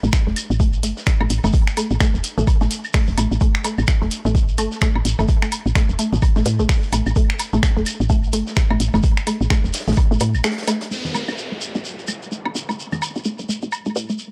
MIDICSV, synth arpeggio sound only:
0, 0, Header, 1, 2, 480
1, 0, Start_track
1, 0, Tempo, 468750
1, 1572, Time_signature, 4, 2, 24, 8
1, 14662, End_track
2, 0, Start_track
2, 0, Title_t, "Synth arpeggio sound"
2, 0, Program_c, 0, 84
2, 34, Note_on_c, 0, 57, 80
2, 69, Note_off_c, 0, 57, 0
2, 274, Note_on_c, 0, 57, 70
2, 295, Note_off_c, 0, 57, 0
2, 612, Note_on_c, 0, 57, 80
2, 663, Note_off_c, 0, 57, 0
2, 852, Note_on_c, 0, 57, 75
2, 883, Note_off_c, 0, 57, 0
2, 1234, Note_on_c, 0, 57, 78
2, 1269, Note_off_c, 0, 57, 0
2, 1474, Note_on_c, 0, 57, 75
2, 1495, Note_off_c, 0, 57, 0
2, 1812, Note_on_c, 0, 57, 72
2, 1863, Note_off_c, 0, 57, 0
2, 2052, Note_on_c, 0, 57, 86
2, 2083, Note_off_c, 0, 57, 0
2, 2433, Note_on_c, 0, 57, 75
2, 2469, Note_off_c, 0, 57, 0
2, 2674, Note_on_c, 0, 57, 80
2, 2695, Note_off_c, 0, 57, 0
2, 3012, Note_on_c, 0, 57, 84
2, 3063, Note_off_c, 0, 57, 0
2, 3252, Note_on_c, 0, 57, 73
2, 3283, Note_off_c, 0, 57, 0
2, 3492, Note_on_c, 0, 57, 83
2, 3543, Note_off_c, 0, 57, 0
2, 3732, Note_on_c, 0, 57, 78
2, 3763, Note_off_c, 0, 57, 0
2, 4113, Note_on_c, 0, 57, 76
2, 4149, Note_off_c, 0, 57, 0
2, 4354, Note_on_c, 0, 57, 77
2, 4375, Note_off_c, 0, 57, 0
2, 4692, Note_on_c, 0, 57, 80
2, 4743, Note_off_c, 0, 57, 0
2, 4932, Note_on_c, 0, 57, 80
2, 4963, Note_off_c, 0, 57, 0
2, 5314, Note_on_c, 0, 57, 77
2, 5349, Note_off_c, 0, 57, 0
2, 5554, Note_on_c, 0, 57, 71
2, 5575, Note_off_c, 0, 57, 0
2, 5892, Note_on_c, 0, 57, 92
2, 5943, Note_off_c, 0, 57, 0
2, 6132, Note_on_c, 0, 57, 75
2, 6163, Note_off_c, 0, 57, 0
2, 6514, Note_on_c, 0, 57, 81
2, 6549, Note_off_c, 0, 57, 0
2, 6753, Note_on_c, 0, 57, 71
2, 6775, Note_off_c, 0, 57, 0
2, 7092, Note_on_c, 0, 57, 74
2, 7143, Note_off_c, 0, 57, 0
2, 7332, Note_on_c, 0, 57, 80
2, 7363, Note_off_c, 0, 57, 0
2, 7714, Note_on_c, 0, 57, 73
2, 7749, Note_off_c, 0, 57, 0
2, 7954, Note_on_c, 0, 57, 70
2, 7975, Note_off_c, 0, 57, 0
2, 8292, Note_on_c, 0, 57, 77
2, 8343, Note_off_c, 0, 57, 0
2, 8531, Note_on_c, 0, 57, 80
2, 8562, Note_off_c, 0, 57, 0
2, 8913, Note_on_c, 0, 57, 80
2, 8949, Note_off_c, 0, 57, 0
2, 9153, Note_on_c, 0, 57, 78
2, 9175, Note_off_c, 0, 57, 0
2, 9491, Note_on_c, 0, 57, 81
2, 9543, Note_off_c, 0, 57, 0
2, 9731, Note_on_c, 0, 57, 88
2, 9762, Note_off_c, 0, 57, 0
2, 10113, Note_on_c, 0, 57, 77
2, 10149, Note_off_c, 0, 57, 0
2, 10353, Note_on_c, 0, 57, 81
2, 10375, Note_off_c, 0, 57, 0
2, 10691, Note_on_c, 0, 57, 77
2, 10743, Note_off_c, 0, 57, 0
2, 10932, Note_on_c, 0, 57, 72
2, 10962, Note_off_c, 0, 57, 0
2, 11172, Note_on_c, 0, 57, 80
2, 11223, Note_off_c, 0, 57, 0
2, 11412, Note_on_c, 0, 57, 76
2, 11443, Note_off_c, 0, 57, 0
2, 11794, Note_on_c, 0, 57, 69
2, 11829, Note_off_c, 0, 57, 0
2, 12033, Note_on_c, 0, 57, 68
2, 12055, Note_off_c, 0, 57, 0
2, 12372, Note_on_c, 0, 57, 75
2, 12423, Note_off_c, 0, 57, 0
2, 12612, Note_on_c, 0, 57, 79
2, 12643, Note_off_c, 0, 57, 0
2, 12993, Note_on_c, 0, 57, 75
2, 13029, Note_off_c, 0, 57, 0
2, 13234, Note_on_c, 0, 57, 66
2, 13255, Note_off_c, 0, 57, 0
2, 13572, Note_on_c, 0, 57, 80
2, 13623, Note_off_c, 0, 57, 0
2, 13812, Note_on_c, 0, 57, 76
2, 13843, Note_off_c, 0, 57, 0
2, 14194, Note_on_c, 0, 57, 75
2, 14229, Note_off_c, 0, 57, 0
2, 14433, Note_on_c, 0, 57, 69
2, 14455, Note_off_c, 0, 57, 0
2, 14662, End_track
0, 0, End_of_file